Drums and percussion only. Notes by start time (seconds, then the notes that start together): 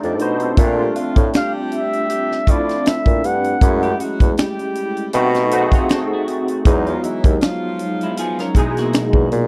0.03 closed hi-hat
0.19 closed hi-hat
0.40 closed hi-hat
0.57 kick, closed hi-hat
0.96 closed hi-hat
1.16 kick, closed hi-hat
1.33 finger snap, snare, closed hi-hat
1.72 closed hi-hat
1.93 closed hi-hat
2.10 closed hi-hat
2.32 snare
2.47 kick, closed hi-hat
2.69 snare, closed hi-hat
2.86 finger snap, snare, closed hi-hat
3.06 kick, closed hi-hat
3.24 closed hi-hat
3.44 closed hi-hat
3.61 kick, closed hi-hat
3.83 closed hi-hat
4.00 closed hi-hat
4.20 kick, closed hi-hat
4.37 finger snap, snare, closed hi-hat
4.59 closed hi-hat
4.75 closed hi-hat
4.97 closed hi-hat
5.13 closed hi-hat
5.34 snare, closed hi-hat
5.51 closed hi-hat
5.72 kick, closed hi-hat
5.89 finger snap, snare, closed hi-hat
6.28 closed hi-hat
6.48 closed hi-hat
6.65 kick, closed hi-hat
6.87 closed hi-hat
7.04 closed hi-hat
7.24 kick, closed hi-hat
7.41 finger snap, snare, closed hi-hat
7.79 closed hi-hat
8.01 closed hi-hat
8.17 closed hi-hat
8.39 snare, closed hi-hat
8.55 kick, closed hi-hat
8.77 snare, closed hi-hat
8.93 finger snap, snare, closed hi-hat
9.13 kick
9.32 closed hi-hat